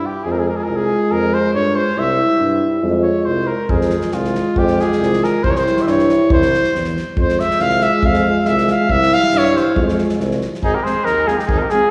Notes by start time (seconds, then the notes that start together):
0.06 G4
0.23 F2 G#3 F4 G#4
0.32 A#4
0.39 G#4
0.48 A#4
0.56 G#4
0.64 A#4
0.68 C2
0.76 G#4
1.11 F2 A#4
1.34 C5
1.54 G2 C#5
1.76 C5
1.96 C2 G3 E4 E5
2.40 G2
2.82 F2 G#3 F4
3.03 C#5
3.25 C2 C5
3.47 A#4
3.69 F2 G#3 F4 G#4, kick
3.81 snare
3.90 snare
4.01 snare
4.12 C2 F4, snare
4.25 snare
4.35 snare
4.56 F2 G4, kick
4.67 snare
4.79 G#4, snare
4.92 snare
5.00 C2, snare
5.13 snare
5.24 A#4, snare
5.43 C2 G3 E4 C5, kick
5.50 C#5
5.56 C5, snare
5.66 snare
5.77 snare
5.81 E5
5.87 G2 C#5, snare
5.99 snare
6.09 snare
6.30 C2 C5, kick
6.42 snare
6.54 snare
6.64 snare
6.74 E2, snare
6.84 snare
6.97 snare
7.16 F2 G#3 F4 C5, kick
7.29 snare
7.39 E5, snare
7.51 snare
7.59 C2 F5, snare
7.69 snare
7.81 E5, snare
8.03 F2 F5, kick
8.14 snare
8.45 C2 E5, snare
8.58 snare
8.68 F5, snare
8.89 C2 G3 E4 E5, kick
9.02 snare
9.12 F5, snare
9.23 snare
9.33 G2, snare
9.38 C#5
9.44 snare
9.56 C5, snare
9.75 F2 G#3 F4, kick
9.89 snare
9.98 snare
10.09 snare
10.19 C2, snare
10.31 snare
10.41 snare
10.54 snare
10.63 G#1 D#4 G#4, kick
10.74 G4 A#4
10.83 G#3 C4 G#4 C5, snare
11.05 D#2 D#4 A#4, snare
11.26 G#3 C4 F4 G#4, snare
11.39 D#4 G4, snare
11.46 G#1 D#4 G#4, kick
11.58 A#4
11.63 G4
11.70 G#3 C4 G#4, snare
11.75 F4